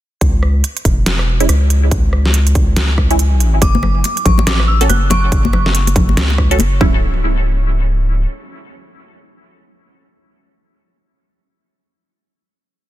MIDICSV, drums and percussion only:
0, 0, Header, 1, 2, 480
1, 0, Start_track
1, 0, Tempo, 425532
1, 239, Time_signature, 4, 2, 24, 8
1, 14542, End_track
2, 0, Start_track
2, 0, Title_t, "Drums"
2, 240, Note_on_c, 9, 36, 118
2, 241, Note_on_c, 9, 42, 86
2, 353, Note_off_c, 9, 36, 0
2, 354, Note_off_c, 9, 42, 0
2, 481, Note_on_c, 9, 37, 52
2, 594, Note_off_c, 9, 37, 0
2, 721, Note_on_c, 9, 42, 82
2, 834, Note_off_c, 9, 42, 0
2, 864, Note_on_c, 9, 42, 56
2, 960, Note_off_c, 9, 42, 0
2, 960, Note_on_c, 9, 36, 63
2, 960, Note_on_c, 9, 42, 59
2, 1073, Note_off_c, 9, 36, 0
2, 1073, Note_off_c, 9, 42, 0
2, 1200, Note_on_c, 9, 38, 119
2, 1200, Note_on_c, 9, 42, 83
2, 1312, Note_off_c, 9, 38, 0
2, 1312, Note_off_c, 9, 42, 0
2, 1344, Note_on_c, 9, 37, 61
2, 1457, Note_off_c, 9, 37, 0
2, 1585, Note_on_c, 9, 42, 56
2, 1681, Note_off_c, 9, 42, 0
2, 1681, Note_on_c, 9, 37, 53
2, 1681, Note_on_c, 9, 42, 83
2, 1794, Note_off_c, 9, 37, 0
2, 1794, Note_off_c, 9, 42, 0
2, 1921, Note_on_c, 9, 42, 57
2, 2033, Note_off_c, 9, 42, 0
2, 2160, Note_on_c, 9, 36, 127
2, 2160, Note_on_c, 9, 42, 86
2, 2272, Note_off_c, 9, 36, 0
2, 2273, Note_off_c, 9, 42, 0
2, 2400, Note_on_c, 9, 37, 48
2, 2513, Note_off_c, 9, 37, 0
2, 2544, Note_on_c, 9, 38, 39
2, 2639, Note_on_c, 9, 42, 82
2, 2657, Note_off_c, 9, 38, 0
2, 2751, Note_off_c, 9, 42, 0
2, 2782, Note_on_c, 9, 42, 57
2, 2879, Note_off_c, 9, 42, 0
2, 2879, Note_on_c, 9, 42, 59
2, 2880, Note_on_c, 9, 36, 115
2, 2992, Note_off_c, 9, 42, 0
2, 2993, Note_off_c, 9, 36, 0
2, 3119, Note_on_c, 9, 38, 125
2, 3119, Note_on_c, 9, 42, 80
2, 3231, Note_off_c, 9, 38, 0
2, 3231, Note_off_c, 9, 42, 0
2, 3359, Note_on_c, 9, 37, 52
2, 3360, Note_on_c, 9, 36, 62
2, 3472, Note_off_c, 9, 37, 0
2, 3473, Note_off_c, 9, 36, 0
2, 3503, Note_on_c, 9, 42, 56
2, 3600, Note_off_c, 9, 42, 0
2, 3600, Note_on_c, 9, 42, 86
2, 3713, Note_off_c, 9, 42, 0
2, 3840, Note_on_c, 9, 42, 60
2, 3953, Note_off_c, 9, 42, 0
2, 4080, Note_on_c, 9, 36, 127
2, 4080, Note_on_c, 9, 42, 87
2, 4086, Note_on_c, 9, 62, 81
2, 4193, Note_off_c, 9, 36, 0
2, 4193, Note_off_c, 9, 42, 0
2, 4199, Note_off_c, 9, 62, 0
2, 4228, Note_on_c, 9, 63, 106
2, 4317, Note_on_c, 9, 64, 92
2, 4320, Note_on_c, 9, 37, 47
2, 4340, Note_off_c, 9, 63, 0
2, 4429, Note_off_c, 9, 64, 0
2, 4432, Note_off_c, 9, 37, 0
2, 4559, Note_on_c, 9, 42, 88
2, 4572, Note_on_c, 9, 62, 52
2, 4672, Note_off_c, 9, 42, 0
2, 4685, Note_off_c, 9, 62, 0
2, 4704, Note_on_c, 9, 42, 58
2, 4800, Note_on_c, 9, 36, 68
2, 4801, Note_off_c, 9, 42, 0
2, 4801, Note_on_c, 9, 42, 58
2, 4804, Note_on_c, 9, 64, 92
2, 4913, Note_off_c, 9, 36, 0
2, 4913, Note_off_c, 9, 42, 0
2, 4916, Note_off_c, 9, 64, 0
2, 4937, Note_on_c, 9, 63, 78
2, 4950, Note_on_c, 9, 62, 85
2, 5041, Note_on_c, 9, 38, 127
2, 5041, Note_on_c, 9, 42, 83
2, 5050, Note_off_c, 9, 63, 0
2, 5063, Note_off_c, 9, 62, 0
2, 5153, Note_off_c, 9, 38, 0
2, 5153, Note_off_c, 9, 42, 0
2, 5184, Note_on_c, 9, 37, 60
2, 5297, Note_off_c, 9, 37, 0
2, 5425, Note_on_c, 9, 42, 56
2, 5427, Note_on_c, 9, 62, 49
2, 5522, Note_off_c, 9, 42, 0
2, 5522, Note_on_c, 9, 37, 51
2, 5522, Note_on_c, 9, 42, 84
2, 5527, Note_on_c, 9, 63, 92
2, 5539, Note_off_c, 9, 62, 0
2, 5635, Note_off_c, 9, 37, 0
2, 5635, Note_off_c, 9, 42, 0
2, 5640, Note_off_c, 9, 63, 0
2, 5755, Note_on_c, 9, 64, 98
2, 5760, Note_on_c, 9, 62, 83
2, 5761, Note_on_c, 9, 42, 54
2, 5868, Note_off_c, 9, 64, 0
2, 5873, Note_off_c, 9, 62, 0
2, 5874, Note_off_c, 9, 42, 0
2, 6001, Note_on_c, 9, 36, 127
2, 6001, Note_on_c, 9, 42, 84
2, 6113, Note_off_c, 9, 36, 0
2, 6114, Note_off_c, 9, 42, 0
2, 6146, Note_on_c, 9, 63, 98
2, 6239, Note_on_c, 9, 64, 98
2, 6242, Note_on_c, 9, 37, 52
2, 6242, Note_on_c, 9, 62, 48
2, 6259, Note_off_c, 9, 63, 0
2, 6352, Note_off_c, 9, 64, 0
2, 6355, Note_off_c, 9, 37, 0
2, 6355, Note_off_c, 9, 62, 0
2, 6385, Note_on_c, 9, 38, 41
2, 6482, Note_on_c, 9, 42, 84
2, 6498, Note_off_c, 9, 38, 0
2, 6595, Note_off_c, 9, 42, 0
2, 6625, Note_on_c, 9, 62, 67
2, 6626, Note_on_c, 9, 42, 55
2, 6720, Note_on_c, 9, 36, 107
2, 6721, Note_off_c, 9, 42, 0
2, 6721, Note_on_c, 9, 42, 58
2, 6727, Note_on_c, 9, 64, 102
2, 6738, Note_off_c, 9, 62, 0
2, 6833, Note_off_c, 9, 36, 0
2, 6834, Note_off_c, 9, 42, 0
2, 6840, Note_off_c, 9, 64, 0
2, 6869, Note_on_c, 9, 63, 71
2, 6962, Note_on_c, 9, 38, 127
2, 6962, Note_on_c, 9, 42, 78
2, 6982, Note_off_c, 9, 63, 0
2, 7075, Note_off_c, 9, 38, 0
2, 7075, Note_off_c, 9, 42, 0
2, 7109, Note_on_c, 9, 62, 50
2, 7200, Note_on_c, 9, 36, 64
2, 7202, Note_on_c, 9, 37, 54
2, 7221, Note_off_c, 9, 62, 0
2, 7313, Note_off_c, 9, 36, 0
2, 7314, Note_off_c, 9, 37, 0
2, 7346, Note_on_c, 9, 42, 54
2, 7430, Note_on_c, 9, 63, 102
2, 7441, Note_off_c, 9, 42, 0
2, 7441, Note_on_c, 9, 42, 84
2, 7447, Note_on_c, 9, 62, 78
2, 7543, Note_off_c, 9, 63, 0
2, 7554, Note_off_c, 9, 42, 0
2, 7559, Note_off_c, 9, 62, 0
2, 7680, Note_on_c, 9, 36, 121
2, 7682, Note_on_c, 9, 64, 100
2, 7793, Note_off_c, 9, 36, 0
2, 7795, Note_off_c, 9, 64, 0
2, 14542, End_track
0, 0, End_of_file